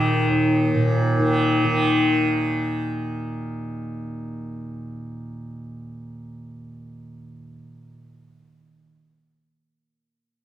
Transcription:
0.00 0.28 D#2 medium
0.00 0.74 A#2 medium
0.00 1.19 D#3 medium
0.00 2.28 D#3 medium
0.28 7.43 D#2 medium
0.74 7.89 A#2 medium
1.19 1.64 D#3 medium
1.64 8.79 D#3 medium

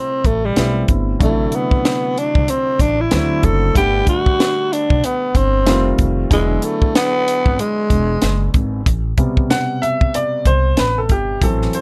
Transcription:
0.00 0.52 C3 medium
0.00 0.52 G3 medium
0.00 0.53 A3 medium
0.00 0.28 C4 medium
0.00 0.53 E4 medium
0.00 0.53 B4 medium
0.25 0.50 A1 medium
0.25 0.47 A3 medium
0.25 kick medium
0.25 closed hi-hat medium
0.45 0.89 G3 medium
0.56 0.82 B1 medium
0.56 1.21 G3 soft
0.56 1.19 A3 soft
0.56 1.21 B3 soft
0.56 1.21 C4 soft
0.56 1.21 E4 medium
0.56 snare loud
0.56 closed hi-hat medium
0.88 1.13 G1 medium
0.88 kick medium
0.88 closed hi-hat medium
1.19 1.45 A1 loud
1.19 3.08 C3 medium
1.19 3.08 D3 medium
1.19 3.08 F#3 medium
1.19 3.08 A3 medium
1.19 1.29 D4 medium
1.19 kick loud
1.19 closed hi-hat medium
1.24 1.57 A3 medium
1.29 3.11 E4 medium
1.52 2.20 B3 medium
1.52 closed hi-hat medium
1.71 kick medium
1.85 snare loud
1.85 closed hi-hat medium
2.18 2.51 D4 medium
2.18 closed hi-hat medium
2.35 2.45 C2 medium
2.35 kick loud
2.48 2.82 C4 medium
2.48 closed hi-hat medium
2.79 3.05 A1 medium
2.79 3.02 D4 medium
2.79 kick medium
2.79 closed hi-hat medium
3.01 3.46 E4 medium
3.11 3.45 D2 loud
3.11 3.73 D3 medium
3.11 3.76 F#3 medium
3.11 3.73 A3 medium
3.11 3.76 C4 medium
3.11 3.76 E4 medium
3.11 snare loud
3.11 closed hi-hat medium
3.43 3.69 F#1 medium
3.43 3.76 A4 medium
3.43 kick medium
3.43 closed hi-hat medium
3.74 4.01 G1 loud
3.74 5.63 D3 medium
3.74 5.63 G3 medium
3.74 5.63 A3 medium
3.74 4.06 G4 loud
3.74 5.63 B4 medium
3.74 5.64 F#5 medium
3.74 kick loud
3.74 closed hi-hat medium
4.07 4.74 F#4 loud
4.07 kick medium
4.07 closed hi-hat medium
4.26 kick medium
4.40 snare loud
4.40 closed hi-hat medium
4.73 5.07 D4 medium
4.73 closed hi-hat medium
4.90 5.01 B1 medium
4.90 kick loud
5.04 5.38 B3 medium
5.04 closed hi-hat medium
5.35 5.67 G1 medium
5.35 6.00 C4 medium
5.35 kick medium
5.35 closed hi-hat medium
5.66 5.92 F1 loud
5.66 6.30 D#3 medium
5.66 6.31 G3 medium
5.66 6.31 A3 medium
5.66 6.31 C4 medium
5.66 6.31 F4 medium
5.66 snare loud
5.66 closed hi-hat medium
5.98 6.24 F1 medium
5.98 kick medium
5.98 closed hi-hat medium
6.30 6.56 E1 loud
6.30 8.82 D3 medium
6.30 8.82 F#3 medium
6.30 6.66 G#3 loud
6.30 8.83 B3 medium
6.30 8.83 E4 medium
6.30 8.82 G#4 medium
6.30 kick loud
6.30 closed hi-hat medium
6.62 6.95 A3 medium
6.62 closed hi-hat medium
6.82 kick medium
6.95 7.61 B3 loud
6.95 snare loud
6.95 closed hi-hat medium
7.28 closed hi-hat medium
7.46 7.56 G#1 medium
7.46 kick loud
7.59 8.55 G#3 medium
7.59 closed hi-hat medium
7.90 8.15 E1 medium
7.90 kick medium
7.90 closed hi-hat medium
8.22 8.47 F#1 medium
8.22 snare loud
8.22 closed hi-hat medium
8.54 8.79 G#1 medium
8.54 kick medium
8.54 closed hi-hat medium
8.86 9.11 A1 loud
8.86 kick loud
8.86 closed hi-hat medium
9.17 11.38 B2 medium
9.17 11.37 C3 soft
9.17 11.38 G3 soft
9.17 kick medium
9.17 closed hi-hat medium
9.37 kick medium
9.50 9.83 F#5 medium
9.50 snare loud
9.50 closed hi-hat medium
9.82 10.15 E5 medium
9.82 closed hi-hat medium
10.01 kick loud
10.14 10.47 D5 medium
10.14 closed hi-hat medium
10.45 10.71 C2 medium
10.45 10.76 C5 medium
10.45 kick medium
10.45 closed hi-hat medium
10.77 11.10 A1 medium
10.77 10.98 B4 medium
10.77 snare loud
10.77 closed hi-hat medium
10.98 11.11 A4 medium
11.09 11.35 G1 medium
11.09 11.44 G4 medium
11.09 kick medium
11.09 closed hi-hat medium
11.42 11.67 A1 loud
11.42 11.81 E3 soft
11.42 11.81 F#3 soft
11.42 11.81 C4 medium
11.42 11.75 A4 medium
11.42 kick loud
11.42 closed hi-hat loud
11.62 snare soft
11.73 11.81 C5 medium
11.73 closed hi-hat medium

